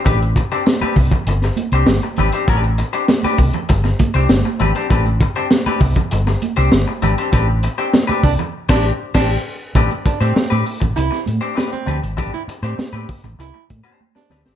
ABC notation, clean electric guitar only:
X:1
M:4/4
L:1/16
Q:1/4=99
K:Am
V:1 name="Clean electric guitar"
[CDGB] z2 [CDGc] z [CDGB] z4 z [CDGc] z2 [CDGB] [CDGc] | [CDGB] z2 [CDGc] z [CDGB] z4 z [CDGc] z2 [CDGB] [CDGc] | [CDGB] z2 [CDGc] z [CDGB] z4 z [CDGc] z2 [CDGB] [CDGc] | [CDGB] z2 [CDGc] z [CDGB] z3 [CDGc]2 z [CDGc]2 z2 |
[CDGB] z2 [CDGc] z [CDGB] z4 z [CDGc] [CDGB] z [CDGB] z | [CDGB] z2 [CDGc] z [CDGB] z4 z [CDGc] z2 [CDGB] [CDGc] |]